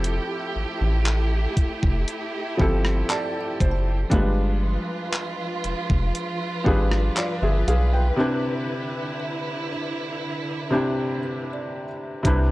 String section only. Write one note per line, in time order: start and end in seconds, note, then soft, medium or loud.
0.00 4.07 A3 medium
0.00 4.07 E4 medium
0.00 4.07 G4 medium
4.11 8.14 F3 medium
4.11 8.14 F4 medium
4.11 12.21 B4 medium
8.18 12.21 D3 medium
8.18 12.21 E4 medium